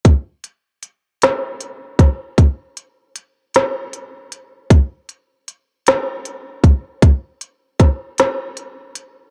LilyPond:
\new DrumStaff \with { instrumentName = "Drums" } \drummode { \time 12/8 \tempo 4. = 52 <hh bd>8 hh8 hh8 <hh sn>8 hh8 <hh bd sn>8 <hh bd>8 hh8 hh8 <hh sn>8 hh8 hh8 | <hh bd>8 hh8 hh8 <hh sn>8 hh8 <hh bd>8 <hh bd>8 hh8 <hh bd sn>8 <hh sn>8 hh8 hh8 | }